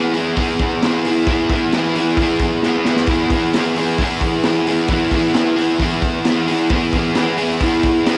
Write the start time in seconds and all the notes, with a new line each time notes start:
Already playing: E3 B3 E4 G#4
0.14 E4 G#4, open hi-hat
0.20 B3
0.36 E3 B3 E4, kick, open hi-hat
0.40 G#4
0.59 kick, open hi-hat
0.82 E3 B3, snare, open hi-hat
0.86 E4 G#4
1.05 E4 G#4, open hi-hat
1.11 B3
1.27 E3 B3, kick, open hi-hat
1.31 E4 G#4
1.50 E4 G#4, kick, open hi-hat
1.56 B3
1.72 E3 B3, snare, open hi-hat
1.77 E4 G#4
1.95 E4 G#4, open hi-hat
2.01 B3
2.17 E3 B3, kick, open hi-hat
2.21 E4 G#4
2.39 kick, open hi-hat
2.63 E3 B3 E4, snare
2.68 G#4
2.85 G#4, snare
2.90 B3 E4
2.96 snare
3.07 E3 B3, kick, open hi-hat
3.11 E4 G#4
3.30 E4 G#4, kick, open hi-hat
3.36 B3
3.54 E3 B3, snare, open hi-hat
3.58 E4 G#4
3.76 G#4, open hi-hat
3.80 B3 E4
3.99 E3 B3 E4, kick, open hi-hat
4.04 G#4
4.21 kick, open hi-hat
4.43 E3 B3, snare, open hi-hat
4.49 E4 G#4
4.67 E4 G#4, open hi-hat
4.73 B3
4.88 E3 B3, kick, open hi-hat
4.93 E4 G#4
5.11 E4 G#4, kick, open hi-hat
5.17 B3
5.34 E3 B3 E4, snare, open hi-hat
5.39 G#4
5.56 E4 G#4, open hi-hat
5.61 B3
5.78 E3 B3, kick, open hi-hat
5.82 E4 G#4
6.02 kick, open hi-hat
6.25 E3 B3, snare, open hi-hat
6.29 E4 G#4
6.47 E4 G#4, open hi-hat
6.53 B3
6.69 E3 B3, kick, open hi-hat
6.74 E4 G#4
6.93 E4 G#4, kick, open hi-hat
6.99 B3
7.15 E3 B3, snare, open hi-hat
7.19 E4 G#4
7.38 E4 G#4, open hi-hat
7.43 B3
7.61 E3 B3 E4, kick, open hi-hat
7.66 G#4
7.83 kick, open hi-hat
8.06 E3 B3 E4, snare, open hi-hat
8.11 G#4